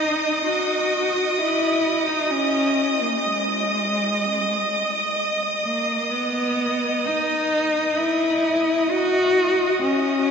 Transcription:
Already playing: D#4 D#5 D#6
0.45 F#4
1.39 E4
2.08 D#4
2.31 C#4
3.01 A#3
3.26 G#3
5.65 A#3
6.10 B3
7.06 D#4
7.97 E4
8.90 F#4
9.82 C#4

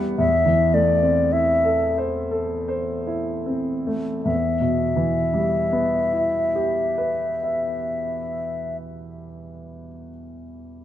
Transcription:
Already playing: E2 G3 B3 E4 G4 B4 E5
0.18 E2 E5
0.46 E3
0.73 A3 D5
1.02 C4
1.32 E4 E5
1.65 A4
1.98 C5
2.31 A4
2.68 C5
3.07 E4
3.46 C4
3.87 A3
4.24 E2 E5
4.60 B2
4.96 E3
5.33 G3
5.72 B3
6.13 E4
6.55 G4
6.98 B4
7.43 E5

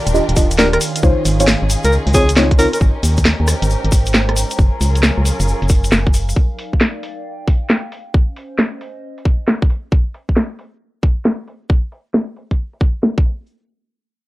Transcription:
Already playing: D#3 D4 F4 G4 A#4 D5 F5 G5
0.07 D#1, closed hi-hat, shaker
0.14 D4 F4 G4 D#5, shaker
0.29 D#1, closed hi-hat
0.36 D4 F4 G4 D#5, kick, open hi-hat, shaker
0.51 closed hi-hat, shaker
0.58 D4 F4 G4 A#4 D5, snare, shaker
0.73 A#4, cross-stick, closed hi-hat
0.81 C#4 D#4 G#4, open hi-hat, shaker
0.96 closed hi-hat, shaker
1.03 C#2 D#4 F4 C5 C#5, kick, shaker
1.25 G#1, open hi-hat, shaker
1.40 C4 D#4 F4 C#5, closed hi-hat, shaker
1.48 snare, shaker
1.62 G#1 C6
1.70 open hi-hat, shaker
1.84 C#2 A#4, closed hi-hat, shaker
1.92 shaker
2.07 C#2, open hi-hat
2.14 C4 D#4 F4 G#4 C#5, kick, open hi-hat, shaker
2.29 closed hi-hat, shaker
2.36 C4 D#4 F4 C#5, snare, shaker
2.51 kick, closed hi-hat
2.59 C4 D#4 F4 A#4 C#5, open hi-hat, shaker
2.73 A#4, closed hi-hat, shaker
2.81 G#1 G#3 G4 A#4, kick
2.86 C5
2.96 A#5
3.03 D#2, open hi-hat, shaker
3.17 kick, closed hi-hat, shaker
3.25 snare, shaker
3.40 D#2 G5
3.48 cross-stick, open hi-hat, shaker
3.62 G#1, closed hi-hat, shaker
3.70 shaker
3.84 G#1, closed hi-hat
3.92 kick, open hi-hat, shaker
4.06 closed hi-hat, shaker
4.14 snare, shaker
4.29 cross-stick, closed hi-hat
4.36 open hi-hat, shaker
4.51 closed hi-hat, shaker
4.59 F#1 F#3 C#4 F4 G#4 A#4, kick, shaker
4.66 A#4
4.80 C#2 F5, open hi-hat, shaker
4.95 closed hi-hat, shaker
5.03 snare, shaker
5.18 C#2
5.25 open hi-hat, shaker
5.40 F#1 G#5, closed hi-hat, shaker
5.48 shaker
5.62 F#1, open hi-hat
5.69 kick, open hi-hat, shaker
5.84 closed hi-hat, shaker
5.92 F#1, snare, shaker
6.07 kick, closed hi-hat
6.14 open hi-hat, shaker
6.29 closed hi-hat, shaker
6.36 D#4, kick
6.44 D5
6.59 open hi-hat
6.73 kick
6.81 snare
6.95 G5
7.03 open hi-hat
7.48 kick, open hi-hat
7.70 snare
7.92 C#4, open hi-hat
8.11 C5, kick
8.36 open hi-hat
8.44 D#5
8.59 snare
8.81 open hi-hat
9.18 open hi-hat
9.25 kick, open hi-hat
9.48 snare
9.62 kick
9.70 open hi-hat
9.92 kick
10.14 open hi-hat
10.29 kick
10.37 snare
10.59 open hi-hat
11.03 kick, open hi-hat
11.25 snare
11.48 open hi-hat
11.70 kick
11.92 open hi-hat
12.14 snare
12.36 open hi-hat
12.51 kick
12.73 open hi-hat
12.81 kick, open hi-hat
13.03 snare
13.18 kick
13.25 open hi-hat

